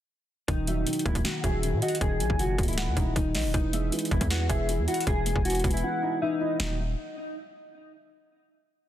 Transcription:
0.48 0.85 D#1 loud
0.48 0.85 D#3 medium
0.48 1.02 D#4 loud
0.48 kick loud
0.48 closed hi-hat medium
0.67 1.63 F#3 medium
0.67 0.85 E5 medium
0.67 closed hi-hat medium
0.86 1.23 D#3 medium
0.86 closed hi-hat medium
0.93 closed hi-hat medium
0.99 closed hi-hat soft
1.06 1.24 C#1 loud
1.06 2.01 A#3 medium
1.06 1.22 E4 medium
1.06 kick medium
1.06 closed hi-hat soft
1.15 kick loud
1.15 closed hi-hat medium
1.24 1.62 D#3 medium
1.24 1.41 F#4 medium
1.24 1.43 F#5 medium
1.24 snare loud
1.24 closed hi-hat medium
1.44 1.74 D#1 loud
1.44 2.39 F#4 medium
1.44 1.80 G#4 medium
1.44 1.80 E5 medium
1.44 kick loud
1.44 closed hi-hat medium
1.63 1.99 D#3 medium
1.63 closed hi-hat medium
1.73 1.82 A#2 loud
1.82 1.98 F#4 medium
1.82 2.78 D#5 medium
1.82 2.00 F#5 medium
1.82 closed hi-hat medium
1.88 closed hi-hat medium
1.95 closed hi-hat medium
2.01 2.22 D#1 loud
2.01 2.97 D#3 medium
2.01 2.37 G#4 loud
2.01 2.74 G#5 loud
2.01 kick loud
2.01 closed hi-hat medium
2.20 2.29 A#1 loud
2.20 3.16 F#3 medium
2.20 closed hi-hat medium
2.30 2.57 F#1 loud
2.30 kick medium
2.39 3.35 A#2 medium
2.39 2.66 F#4 medium
2.39 closed hi-hat medium
2.58 2.89 C#1 loud
2.58 3.54 A#3 medium
2.58 kick loud
2.58 closed hi-hat medium
2.63 closed hi-hat medium
2.68 3.13 E4 medium
2.68 closed hi-hat medium
2.73 closed hi-hat soft
2.78 3.14 F#5 medium
2.78 snare loud
2.78 closed hi-hat medium
2.87 2.96 D#2 loud
2.97 3.15 D#1 loud
2.97 3.54 D#4 medium
2.97 kick medium
2.97 closed hi-hat medium
3.16 3.36 D#1 loud
3.16 3.54 D#3 medium
3.16 3.52 D#4 medium
3.16 kick medium
3.16 closed hi-hat medium
3.35 3.46 A#1 loud
3.35 3.54 D#5 medium
3.35 snare loud
3.35 open hi-hat medium
3.45 3.54 D#1 loud
3.54 3.91 E1 loud
3.54 3.91 E3 medium
3.54 4.08 D#4 medium
3.54 kick loud
3.54 closed hi-hat medium
3.73 4.68 G#3 medium
3.73 3.91 E5 medium
3.73 closed hi-hat medium
3.92 4.29 E3 medium
3.92 closed hi-hat medium
3.99 closed hi-hat medium
4.05 closed hi-hat soft
4.11 4.21 E1 loud
4.11 5.07 B3 medium
4.11 4.27 E4 medium
4.11 kick medium
4.11 closed hi-hat soft
4.21 4.48 E2 loud
4.21 kick loud
4.21 closed hi-hat medium
4.30 4.68 E3 loud
4.30 4.47 F#4 medium
4.30 4.48 F#5 loud
4.30 snare loud
4.30 closed hi-hat medium
4.49 4.80 E1 loud
4.49 4.85 G#4 medium
4.49 4.85 E5 medium
4.49 kick medium
4.49 closed hi-hat medium
4.69 5.05 E3 medium
4.69 closed hi-hat medium
4.78 4.87 E2 loud
4.88 5.83 E4 medium
4.88 5.04 F#4 medium
4.88 5.06 F#5 medium
4.88 closed hi-hat medium
4.94 closed hi-hat medium
5.00 closed hi-hat medium
5.07 5.34 E1 loud
5.07 5.44 E3 medium
5.07 5.43 G#4 loud
5.07 5.79 G#5 loud
5.07 kick loud
5.07 closed hi-hat medium
5.26 6.22 G#3 medium
5.26 closed hi-hat medium
5.36 5.63 E1 loud
5.36 kick medium
5.45 5.82 E3 medium
5.45 5.72 F#4 medium
5.45 closed hi-hat medium
5.50 closed hi-hat medium
5.55 closed hi-hat medium
5.59 closed hi-hat soft
5.64 5.83 E1 loud
5.64 6.60 B3 medium
5.64 kick medium
5.64 closed hi-hat medium
5.71 6.19 E4 medium
5.71 closed hi-hat medium
5.77 closed hi-hat medium
5.83 6.20 E3 medium
5.83 6.19 F#5 medium
6.02 6.58 D#4 medium
6.22 6.60 E3 medium
6.22 6.58 D#4 medium
6.22 6.40 E5 medium
6.40 6.60 E4 medium
6.40 6.59 D#5 medium
6.60 6.95 D#1 loud
6.60 6.78 D#3 medium
6.60 6.78 F#3 medium
6.60 6.78 A#3 medium
6.60 6.78 D#4 medium
6.60 6.78 D#5 medium
6.60 snare loud

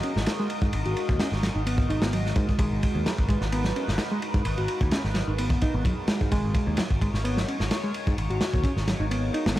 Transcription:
0.00 9.60 G#3 medium
0.00 0.11 C#4 medium
0.00 9.60 D#4 medium
0.00 9.60 F#4 medium
0.00 9.60 A#4 medium
0.00 2.58 D#5 medium
0.00 ride medium
0.16 0.24 G#1 medium
0.16 snare medium
0.26 snare loud
0.26 ride medium
0.39 0.46 G#3 loud
0.50 ride medium
0.62 0.70 G#2 medium
0.62 kick medium
0.73 0.82 G#1 loud
0.73 ride loud
0.85 0.94 G#1 medium
0.85 1.19 F#4 medium
0.85 ride soft
0.97 ride medium
1.09 1.17 D#2 medium
1.09 kick medium
1.20 1.28 C#4 medium
1.20 snare loud
1.20 ride loud
1.32 1.49 G#1 medium
1.32 snare soft
1.43 1.48 F#3 medium
1.43 snare medium
1.43 ride medium
1.55 1.85 G#1 loud
1.55 1.60 D#4 medium
1.67 1.89 B3 medium
1.67 ride medium
1.78 kick loud
1.89 1.99 G#1 medium
1.89 2.01 D#4 loud
1.89 ride medium
2.02 2.31 G#1 medium
2.02 2.12 B3 medium
2.02 snare loud
2.13 2.21 F#3 medium
2.13 ride medium
2.26 snare soft
2.36 2.45 G#2 medium
2.36 2.58 G#3 medium
2.36 kick loud
2.36 ride medium
2.49 kick medium
2.59 2.68 G#1 loud
2.59 3.05 G#3 loud
2.59 6.30 B4 medium
2.59 kick loud
2.59 ride medium
2.72 2.80 G#1 medium
2.83 kick medium
2.83 ride medium
2.95 3.03 D#2 medium
3.06 3.11 F#3 medium
3.06 snare loud
3.06 ride medium
3.18 3.35 G#1 medium
3.18 kick loud
3.29 3.37 G#3 loud
3.29 kick loud
3.29 ride medium
3.41 3.71 G#1 loud
3.41 snare soft
3.52 3.64 B3 loud
3.52 ride medium
3.64 3.71 F#3 medium
3.64 snare medium
3.76 3.83 C#4 medium
3.76 ride medium
3.88 3.96 G#1 loud
3.88 snare medium
3.98 snare loud
3.98 ride medium
4.12 4.18 G#3 loud
4.22 ride medium
4.34 4.42 G#2 medium
4.34 kick loud
4.45 4.55 G#1 loud
4.45 ride medium
4.58 4.66 G#1 medium
4.58 4.91 F#4 medium
4.58 ride soft
4.68 ride medium
4.81 4.89 D#2 loud
4.81 kick loud
4.91 5.00 C#4 medium
4.91 snare loud
4.91 ride medium
5.04 5.21 G#1 medium
5.04 snare soft
5.14 5.20 F#3 medium
5.14 snare medium
5.14 ride medium
5.28 5.57 G#1 loud
5.28 5.32 D#4 medium
5.38 5.61 B3 medium
5.38 ride loud
5.50 kick loud
5.61 5.73 D#4 loud
5.61 kick loud
5.61 ride medium
5.74 5.82 G#1 medium
5.74 5.84 B3 medium
5.85 5.93 F#3 medium
5.85 kick medium
5.85 ride medium
6.08 6.30 G#3 medium
6.08 snare loud
6.08 ride medium
6.21 6.29 G#2 medium
6.21 kick medium
6.32 6.41 G#1 loud
6.32 6.77 G#3 loud
6.32 9.60 C#5 medium
6.32 kick loud
6.32 ride medium
6.44 6.52 G#1 medium
6.55 kick loud
6.55 ride medium
6.67 6.75 D#2 medium
6.77 6.83 F#3 medium
6.77 snare loud
6.77 ride medium
6.90 7.07 G#1 medium
6.90 kick medium
7.01 7.09 G#3 loud
7.01 kick medium
7.01 ride medium
7.14 7.43 G#1 loud
7.14 snare soft
7.25 7.36 B3 loud
7.25 ride medium
7.37 7.44 F#3 medium
7.37 snare medium
7.48 7.56 C#4 medium
7.48 ride medium
7.60 7.68 G#1 loud
7.60 snare medium
7.71 snare loud
7.71 ride loud
7.84 7.90 G#3 loud
7.94 ride medium
8.07 8.15 G#2 medium
8.07 kick medium
8.18 8.27 G#1 loud
8.18 ride medium
8.30 8.38 G#1 medium
8.30 8.63 F#4 medium
8.30 ride soft
8.41 snare loud
8.41 ride medium
8.54 8.61 D#2 loud
8.54 kick medium
8.64 8.72 C#4 medium
8.64 kick medium
8.64 ride medium
8.76 8.93 G#1 medium
8.76 snare soft
8.87 8.92 F#3 medium
8.87 snare medium
8.87 ride medium
9.00 9.29 G#1 loud
9.00 9.04 D#4 medium
9.11 9.33 B3 medium
9.11 ride medium
9.34 9.45 D#4 loud
9.34 ride medium
9.46 9.54 G#1 loud
9.46 9.56 B3 medium
9.46 snare loud
9.56 snare loud

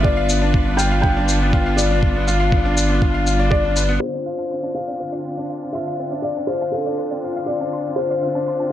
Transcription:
0.00 3.99 G1 medium
0.00 4.01 G3 medium
0.00 0.30 B3 medium
0.00 0.42 D4 medium
0.00 8.72 D4 medium
0.00 0.04 F4 medium
0.00 8.72 F4 medium
0.00 4.02 B4 medium
0.00 0.81 D5 medium
0.00 0.17 F5 loud
0.04 0.12 F4 medium
0.04 kick medium
0.17 0.29 F5 medium
0.29 0.36 B3 medium
0.29 shaker medium
0.42 0.49 D4 loud
0.54 kick loud
0.67 0.74 B3 medium
0.77 0.86 F4 medium
0.77 1.00 G5 medium
0.77 shaker medium
0.92 1.03 F5 medium
1.02 1.11 B3 medium
1.02 1.79 G5 medium
1.02 kick medium
1.17 1.23 D4 medium
1.29 shaker medium
1.42 1.48 B3 medium
1.53 1.61 F4 loud
1.53 kick medium
1.66 1.78 F5 medium
1.77 1.85 B3 medium
1.77 3.49 D5 medium
1.77 shaker medium
1.91 1.98 D4 medium
2.03 kick medium
2.15 2.22 B3 medium
2.28 2.35 F4 medium
2.28 shaker medium
2.40 2.52 F5 medium
2.52 2.60 B3 medium
2.52 kick medium
2.65 2.72 D4 medium
2.77 shaker medium
2.90 2.97 B3 medium
3.02 3.09 F4 medium
3.02 kick medium
3.14 3.26 F5 medium
3.27 3.39 F4 medium
3.27 shaker medium
3.39 3.51 D5 loud
3.51 3.59 F4 medium
3.51 4.02 D5 loud
3.51 kick loud
3.64 3.76 D4 medium
3.76 3.88 B4 medium
3.76 shaker medium
3.89 4.01 B3 medium
4.00 8.72 D3 medium
4.00 4.77 C5 medium
4.00 4.08 C5 medium
4.14 4.21 C4 medium
4.14 4.17 D5 medium
4.26 4.33 F4 medium
4.26 4.32 F5 medium
4.38 4.50 F5 medium
4.38 4.48 A5 medium
4.51 4.58 C4 medium
4.51 4.57 C6 medium
4.63 4.70 D4 medium
4.63 4.67 A5 medium
4.75 5.77 F5 medium
4.75 4.79 F5 medium
4.88 4.95 C4 medium
4.88 4.97 D5 medium
5.00 5.08 F4 medium
5.00 5.06 C5 medium
5.13 8.72 C5 medium
5.13 5.16 D5 medium
5.13 5.25 F5 medium
5.25 5.32 C4 medium
5.37 5.45 D4 medium
5.50 5.56 F5 medium
5.63 5.70 C4 medium
5.63 5.66 A5 medium
5.73 5.82 F4 medium
5.73 6.25 E5 medium
5.73 5.81 C6 medium
5.88 5.99 F5 medium
5.99 6.07 C4 medium
5.99 6.06 C5 medium
6.12 6.19 D4 medium
6.12 6.16 D5 medium
6.22 6.49 D5 medium
6.22 6.30 F5 medium
6.37 6.44 C4 medium
6.37 6.46 A5 medium
6.47 6.56 F4 medium
6.47 6.74 C5 medium
6.47 6.55 C6 medium
6.61 6.74 F5 medium
6.61 6.65 A5 medium
6.72 6.81 C4 medium
6.72 7.49 A4 medium
6.72 6.78 F5 medium
6.86 6.94 D4 medium
6.86 6.96 D5 medium
6.99 7.05 C5 medium
7.11 7.18 C4 medium
7.11 7.15 D5 medium
7.24 7.31 F4 medium
7.37 7.48 F5 medium
7.46 7.56 C4 medium
7.46 7.98 D5 medium
7.46 7.55 F5 medium
7.61 7.68 D4 medium
7.61 7.65 A5 medium
7.73 7.79 C6 medium
7.86 7.93 C4 medium
7.96 8.05 F4 medium
7.96 8.72 C5 medium
7.96 8.04 C5 medium
8.10 8.14 D5 medium
8.10 8.22 F5 medium
8.23 8.30 C4 medium
8.23 8.29 F5 medium
8.35 8.42 D4 medium
8.35 8.44 A5 medium
8.48 8.54 C6 medium
8.60 8.67 C4 medium
8.60 8.64 A5 medium

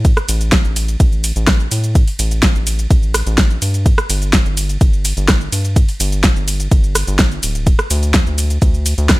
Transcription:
0.00 0.13 A2 medium
0.05 kick loud
0.05 closed hi-hat medium
0.05 ride medium
0.05 shaker soft
0.17 cross-stick medium
0.17 closed hi-hat soft
0.17 shaker soft
0.29 0.61 A1 loud
0.29 open hi-hat loud
0.29 ride medium
0.29 shaker medium
0.41 closed hi-hat soft
0.41 shaker soft
0.52 kick loud
0.52 snare loud
0.52 closed hi-hat medium
0.52 ride medium
0.52 shaker soft
0.65 0.96 A1 medium
0.65 shaker soft
0.76 open hi-hat loud
0.76 ride medium
0.76 shaker medium
0.88 closed hi-hat medium
0.88 shaker soft
1.00 1.32 A1 medium
1.00 kick loud
1.00 closed hi-hat medium
1.00 ride medium
1.00 shaker soft
1.12 shaker soft
1.24 open hi-hat loud
1.24 ride medium
1.24 shaker medium
1.36 1.68 A1 loud
1.36 closed hi-hat medium
1.36 shaker soft
1.47 kick loud
1.47 cross-stick medium
1.47 snare loud
1.47 closed hi-hat medium
1.47 ride medium
1.47 shaker soft
1.60 shaker soft
1.71 2.04 A2 medium
1.71 open hi-hat loud
1.71 ride medium
1.71 shaker medium
1.84 closed hi-hat medium
1.84 shaker soft
1.95 kick loud
1.95 closed hi-hat medium
1.95 ride medium
1.95 shaker soft
2.08 open hi-hat medium
2.08 shaker soft
2.19 2.51 A1 loud
2.19 open hi-hat loud
2.19 ride medium
2.19 shaker medium
2.31 closed hi-hat soft
2.31 shaker soft
2.43 kick loud
2.43 snare loud
2.43 closed hi-hat medium
2.43 ride medium
2.43 shaker soft
2.55 2.87 A1 medium
2.55 shaker soft
2.67 open hi-hat loud
2.67 ride medium
2.67 shaker medium
2.79 closed hi-hat soft
2.79 shaker soft
2.91 3.23 A1 medium
2.91 kick loud
2.91 closed hi-hat medium
2.91 ride medium
2.91 shaker soft
3.03 shaker soft
3.14 cross-stick medium
3.14 open hi-hat loud
3.14 ride medium
3.14 shaker medium
3.26 3.58 A1 loud
3.26 closed hi-hat soft
3.26 shaker soft
3.38 kick loud
3.38 snare loud
3.38 closed hi-hat medium
3.38 ride medium
3.38 shaker soft
3.50 shaker soft
3.62 3.94 G2 medium
3.62 open hi-hat loud
3.62 ride medium
3.62 shaker medium
3.74 closed hi-hat medium
3.74 shaker soft
3.86 kick loud
3.86 closed hi-hat medium
3.86 ride medium
3.86 shaker soft
3.98 cross-stick medium
3.98 closed hi-hat soft
3.98 shaker soft
4.10 4.42 G1 loud
4.10 open hi-hat loud
4.10 ride medium
4.10 shaker medium
4.22 closed hi-hat soft
4.22 shaker soft
4.33 kick loud
4.33 snare loud
4.33 closed hi-hat medium
4.33 ride medium
4.33 shaker soft
4.46 4.77 G1 medium
4.46 shaker soft
4.57 open hi-hat loud
4.57 ride medium
4.57 shaker medium
4.69 closed hi-hat soft
4.69 shaker soft
4.81 5.13 G1 medium
4.81 kick loud
4.81 closed hi-hat medium
4.81 ride medium
4.81 shaker soft
4.93 shaker soft
5.05 open hi-hat loud
5.05 ride medium
5.05 shaker medium
5.17 5.49 G1 loud
5.17 closed hi-hat medium
5.17 shaker soft
5.28 kick loud
5.28 cross-stick medium
5.28 snare loud
5.28 closed hi-hat medium
5.28 ride medium
5.28 shaker soft
5.41 shaker soft
5.52 5.85 G2 medium
5.52 open hi-hat loud
5.52 ride medium
5.52 shaker medium
5.65 closed hi-hat medium
5.65 shaker soft
5.76 kick loud
5.76 closed hi-hat medium
5.76 ride medium
5.76 shaker soft
5.89 open hi-hat medium
5.89 shaker soft
6.00 6.32 G1 loud
6.00 open hi-hat loud
6.00 ride medium
6.00 shaker medium
6.12 closed hi-hat medium
6.12 shaker soft
6.24 kick loud
6.24 snare loud
6.24 closed hi-hat medium
6.24 ride medium
6.24 shaker soft
6.36 6.68 G1 medium
6.36 shaker soft
6.48 open hi-hat medium
6.48 ride medium
6.48 shaker medium
6.60 closed hi-hat medium
6.60 shaker soft
6.71 7.04 G1 medium
6.71 kick loud
6.71 closed hi-hat medium
6.71 ride medium
6.71 shaker soft
6.84 shaker soft
6.95 cross-stick medium
6.95 open hi-hat loud
6.95 ride medium
6.95 shaker medium
7.07 7.39 G1 loud
7.07 closed hi-hat medium
7.07 shaker soft
7.19 kick loud
7.19 snare loud
7.19 closed hi-hat medium
7.19 ride medium
7.19 shaker soft
7.31 shaker soft
7.43 7.75 D1 medium
7.43 open hi-hat loud
7.43 ride medium
7.43 shaker medium
7.55 closed hi-hat medium
7.55 shaker soft
7.67 kick loud
7.67 closed hi-hat medium
7.67 ride medium
7.67 shaker soft
7.79 cross-stick medium
7.79 closed hi-hat soft
7.79 shaker soft
7.90 8.23 D2 loud
7.90 open hi-hat loud
7.90 ride medium
7.90 shaker medium
8.03 closed hi-hat medium
8.03 shaker soft
8.14 kick loud
8.14 snare loud
8.14 closed hi-hat medium
8.14 ride medium
8.14 shaker soft
8.26 8.58 D2 medium
8.26 shaker soft
8.38 open hi-hat loud
8.38 ride medium
8.38 shaker medium
8.50 closed hi-hat medium
8.50 shaker soft
8.62 8.94 D2 medium
8.62 kick loud
8.62 closed hi-hat medium
8.62 ride medium
8.62 shaker soft
8.74 shaker soft
8.86 open hi-hat loud
8.86 ride medium
8.86 shaker medium
8.98 9.20 D2 loud
8.98 closed hi-hat medium
8.98 shaker soft
9.09 kick loud
9.09 cross-stick medium
9.09 snare loud
9.09 closed hi-hat medium
9.09 ride medium
9.09 shaker soft

